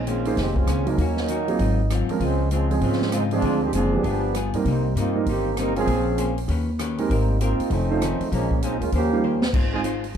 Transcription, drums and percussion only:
0.07 closed hi-hat medium
0.25 open hi-hat soft
0.37 kick soft
0.37 snare soft
0.37 open hi-hat soft
0.56 kick medium
0.67 cross-stick medium
0.67 closed hi-hat medium
0.87 open hi-hat soft
0.98 kick soft
0.98 open hi-hat soft
1.17 snare soft
1.28 closed hi-hat medium
1.48 open hi-hat soft
1.59 kick soft
1.59 open hi-hat soft
1.90 cross-stick medium
1.90 closed hi-hat medium
2.09 open hi-hat soft
2.20 kick soft
2.20 open hi-hat soft
2.51 closed hi-hat medium
2.71 open hi-hat soft
2.81 kick soft
2.81 open hi-hat soft
2.92 snare soft
3.02 snare soft
3.12 cross-stick medium
3.12 closed hi-hat medium
3.31 open hi-hat soft
3.42 kick soft
3.42 open hi-hat soft
3.73 closed hi-hat medium
4.04 kick soft
4.04 open hi-hat soft
4.34 cross-stick medium
4.34 closed hi-hat medium
4.53 open hi-hat soft
4.65 kick soft
4.65 open hi-hat soft
4.97 closed hi-hat medium
5.26 kick soft
5.26 open hi-hat soft
5.57 cross-stick medium
5.57 closed hi-hat medium
5.76 open hi-hat soft
5.87 kick soft
5.87 open hi-hat soft
6.18 closed hi-hat medium
6.38 open hi-hat soft
6.48 kick soft
6.48 open hi-hat medium
6.79 cross-stick medium
6.79 closed hi-hat medium
6.98 open hi-hat soft
7.10 kick soft
7.10 open hi-hat medium
7.41 closed hi-hat medium
7.60 open hi-hat soft
7.70 kick soft
7.70 open hi-hat soft
8.02 cross-stick medium
8.02 closed hi-hat medium
8.21 open hi-hat soft
8.32 kick soft
8.32 open hi-hat medium
8.51 kick soft
8.62 closed hi-hat medium
8.81 open hi-hat soft
8.92 kick soft
8.92 open hi-hat soft
9.42 snare medium
9.54 kick medium
9.54 crash medium
9.84 closed hi-hat medium
10.04 open hi-hat soft

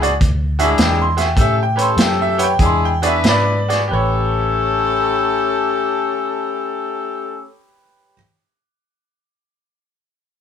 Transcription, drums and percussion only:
0.03 closed hi-hat medium
0.21 kick loud
0.21 closed hi-hat medium
0.59 closed hi-hat medium
0.78 snare loud
0.78 closed hi-hat medium
1.17 snare soft
1.17 closed hi-hat medium
1.37 kick loud
1.37 closed hi-hat medium
1.78 closed hi-hat medium
1.97 snare loud
1.97 closed hi-hat medium
2.39 closed hi-hat medium
2.59 kick loud
2.59 closed hi-hat medium
3.03 closed hi-hat medium
3.24 snare loud
3.24 closed hi-hat medium
3.70 snare soft
3.70 closed hi-hat medium

